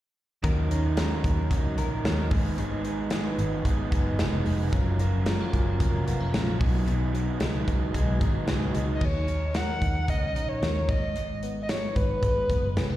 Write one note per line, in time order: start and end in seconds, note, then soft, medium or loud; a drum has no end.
0.43 1.07 D#2 loud
0.43 0.70 D#3 medium
0.43 3.94 D#3 medium
0.43 0.70 F#3 medium
0.43 0.71 C#4 medium
0.43 0.71 D#4 medium
0.43 1.23 A#4 medium
0.43 0.69 A#4 medium
0.43 kick medium
0.43 closed hi-hat medium
0.71 2.04 C#4 medium
0.71 0.97 C#4 soft
0.71 0.98 D#4 medium
0.71 0.97 A#4 medium
0.71 closed hi-hat medium
0.97 1.54 D#3 medium
0.97 1.49 F#3 medium
0.97 1.50 C#4 medium
0.97 1.51 D#4 medium
0.97 1.52 D#4 medium
0.97 1.52 A#4 medium
0.97 snare loud
0.97 closed hi-hat medium
1.24 1.47 D#2 medium
1.24 1.77 A#4 medium
1.24 kick medium
1.24 closed hi-hat medium
1.50 1.78 C#2 medium
1.50 1.78 F#3 medium
1.50 1.78 C#4 medium
1.50 2.59 D#4 medium
1.50 1.78 D#4 medium
1.50 1.76 A#4 medium
1.50 kick medium
1.50 closed hi-hat medium
1.77 2.01 A#1 medium
1.77 2.04 C#4 soft
1.77 2.05 D#4 soft
1.77 2.04 A#4 medium
1.77 2.37 A#4 medium
1.77 closed hi-hat medium
2.04 2.27 D#2 medium
2.04 2.31 D#3 medium
2.04 2.32 F#3 medium
2.04 2.37 C#4 medium
2.04 2.32 C#4 medium
2.04 2.31 D#4 medium
2.04 2.30 A#4 medium
2.04 snare loud
2.04 closed hi-hat medium
2.31 3.11 G#1 medium
2.31 2.57 G#2 medium
2.31 2.56 G#3 soft
2.31 2.57 B3 soft
2.31 2.57 D#4 medium
2.31 2.58 G#4 medium
2.31 kick loud
2.31 open hi-hat medium
2.57 2.84 G#2 medium
2.57 4.73 G#2 medium
2.57 2.85 D#3 medium
2.57 2.85 G#3 medium
2.57 2.85 B3 medium
2.57 2.84 D#4 medium
2.57 3.38 D#4 medium
2.57 2.83 G#4 medium
2.57 closed hi-hat medium
2.84 4.18 G#3 soft
2.84 3.10 G#3 soft
2.84 3.11 B3 medium
2.84 3.11 D#4 medium
2.84 3.11 G#4 medium
2.84 closed hi-hat medium
3.10 3.65 G#2 medium
3.10 3.65 D#3 medium
3.10 3.63 G#3 medium
3.10 3.65 B3 medium
3.10 3.64 B3 medium
3.10 3.66 D#4 medium
3.10 3.66 G#4 medium
3.10 snare loud
3.10 closed hi-hat medium
3.38 3.61 G#1 medium
3.38 3.91 D#4 medium
3.38 closed hi-hat medium
3.64 3.88 G#1 medium
3.64 3.92 G#3 medium
3.64 3.92 B3 medium
3.64 4.45 B3 medium
3.64 3.91 D#4 medium
3.64 3.90 G#4 medium
3.64 kick medium
3.64 closed hi-hat medium
3.91 4.15 F#1 medium
3.91 4.18 G#3 soft
3.91 4.18 B3 soft
3.91 4.19 D#4 soft
3.91 4.73 D#4 medium
3.91 4.19 G#4 soft
3.91 kick medium
3.91 closed hi-hat medium
4.19 4.42 F1 medium
4.19 4.46 G#2 medium
4.19 4.46 D#3 medium
4.19 4.78 G#3 medium
4.19 4.46 G#3 medium
4.19 4.46 B3 medium
4.19 4.45 D#4 medium
4.19 4.44 G#4 medium
4.19 snare loud
4.19 closed hi-hat medium
4.45 4.69 F1 medium
4.45 4.71 G#3 soft
4.45 4.78 B3 medium
4.45 4.73 B3 medium
4.45 4.73 D#4 medium
4.45 4.72 G#4 medium
4.45 open hi-hat medium
4.72 5.36 F#1 medium
4.72 6.60 F#2 medium
4.72 4.99 F#3 medium
4.72 5.00 C#4 medium
4.72 5.52 C#4 medium
4.72 5.00 F4 medium
4.72 4.98 A#4 medium
4.72 kick loud
4.72 closed hi-hat medium
4.99 6.32 F3 medium
4.99 5.27 C#4 soft
4.99 5.27 F4 medium
4.99 5.26 A#4 medium
4.99 closed hi-hat medium
5.26 5.79 F#3 medium
5.26 5.40 G#3 medium
5.26 5.80 C#4 medium
5.26 5.81 F4 medium
5.26 5.82 A#4 medium
5.26 snare loud
5.26 closed hi-hat medium
5.40 5.79 A#3 soft
5.53 5.76 F#1 medium
5.53 6.06 C#4 medium
5.53 kick medium
5.53 closed hi-hat medium
5.79 6.03 F1 medium
5.79 6.06 F#3 medium
5.79 6.66 A#3 medium
5.79 6.07 C#4 medium
5.79 6.06 F4 medium
5.79 6.05 A#4 medium
5.79 kick medium
5.79 closed hi-hat medium
6.06 6.30 F1 medium
6.06 6.20 B3 medium
6.06 6.33 C#4 soft
6.06 6.33 F4 medium
6.06 6.33 A#4 medium
6.06 closed hi-hat medium
6.20 6.66 C#4 medium
6.33 6.57 A#1 medium
6.33 6.65 F3 medium
6.33 6.60 F#3 medium
6.33 6.61 C#4 medium
6.33 6.60 F4 loud
6.33 6.59 A#4 loud
6.33 snare loud
6.33 closed hi-hat medium
6.59 7.29 B1 medium
6.59 6.85 B2 medium
6.59 6.86 F#3 soft
6.59 6.87 B3 soft
6.59 6.87 D#4 soft
6.59 6.87 G#4 medium
6.59 kick loud
6.59 open hi-hat medium
6.86 9.01 B2 medium
6.86 7.14 B2 medium
6.86 7.14 D#3 medium
6.86 7.14 F#3 medium
6.86 7.14 B3 medium
6.86 7.68 D#4 medium
6.86 7.13 D#4 medium
6.86 7.11 G#4 medium
6.86 closed hi-hat medium
7.13 8.48 F#3 medium
7.13 7.40 F#3 soft
7.13 7.41 B3 soft
7.13 7.41 D#4 medium
7.13 7.40 G#4 medium
7.13 closed hi-hat medium
7.40 7.64 C#2 medium
7.40 7.94 B2 medium
7.40 8.48 D#3 medium
7.40 7.93 F#3 medium
7.40 7.93 G#3 medium
7.40 7.93 B3 medium
7.40 7.95 D#4 medium
7.40 7.95 G#4 medium
7.40 snare loud
7.40 closed hi-hat medium
7.68 7.90 C#2 medium
7.68 8.21 D#4 medium
7.68 kick medium
7.68 closed hi-hat medium
7.94 8.17 B1 medium
7.94 8.21 F#3 medium
7.94 8.73 G#3 medium
7.94 8.21 B3 medium
7.94 8.21 D#4 medium
7.94 8.19 G#4 medium
7.94 kick medium
7.94 closed hi-hat medium
8.20 8.44 G#1 medium
8.20 8.48 F#3 soft
8.20 8.48 B3 soft
8.20 9.28 D#4 medium
8.20 8.48 D#4 medium
8.20 8.48 G#4 medium
8.20 kick medium
8.20 closed hi-hat medium
8.48 8.71 C#2 medium
8.48 8.75 B2 medium
8.48 8.75 D#3 medium
8.48 9.07 F#3 medium
8.48 8.75 F#3 medium
8.48 8.75 B3 medium
8.48 8.74 D#4 medium
8.48 8.73 G#4 medium
8.48 snare medium
8.48 closed hi-hat medium
8.74 8.98 C#2 medium
8.74 9.03 F#3 soft
8.74 9.07 G#3 medium
8.74 9.02 B3 soft
8.74 9.02 D#4 medium
8.74 9.01 G#4 medium
8.74 closed hi-hat medium
8.95 9.06 D#5 medium
9.01 9.65 D#2 medium
9.01 12.52 D#3 medium
9.01 9.58 C#5 loud
9.01 kick medium
9.01 crash medium
9.28 9.81 D#4 medium
9.28 closed hi-hat medium
9.54 10.62 A#4 medium
9.54 10.11 F#5 medium
9.54 snare loud
9.54 closed hi-hat medium
9.81 10.05 D#2 medium
9.81 10.36 D#4 soft
9.81 kick medium
9.81 closed hi-hat medium
10.08 10.34 C#2 medium
10.08 10.95 C#4 medium
10.08 10.50 D#5 medium
10.08 kick medium
10.08 closed hi-hat medium
10.34 10.58 A#1 medium
10.34 11.69 D#4 medium
10.34 closed hi-hat medium
10.48 10.90 C#5 medium
10.62 10.85 D#2 medium
10.62 10.95 A#4 medium
10.62 snare loud
10.62 closed hi-hat medium
10.89 11.69 G#1 medium
10.89 11.15 G#2 medium
10.89 11.43 D#5 medium
10.89 kick medium
10.89 closed hi-hat medium
11.16 12.97 G#2 medium
11.16 closed hi-hat medium
11.43 11.95 B3 medium
11.43 closed hi-hat medium
11.63 11.71 D#5 medium
11.69 12.76 D#4 medium
11.69 11.97 C#5 medium
11.69 snare loud
11.69 closed hi-hat medium
11.96 12.19 G#1 medium
11.96 12.49 B3 medium
11.96 12.97 B4 medium
11.96 kick medium
11.96 closed hi-hat medium
12.23 12.46 G#1 medium
12.23 12.97 G#3 medium
12.23 kick medium
12.23 closed hi-hat medium
12.50 12.73 F#1 medium
12.50 12.97 B3 medium
12.50 kick medium
12.50 closed hi-hat medium
12.77 12.97 F1 medium
12.77 12.90 C#4 medium
12.77 snare loud
12.77 closed hi-hat medium
12.90 12.97 D#4 medium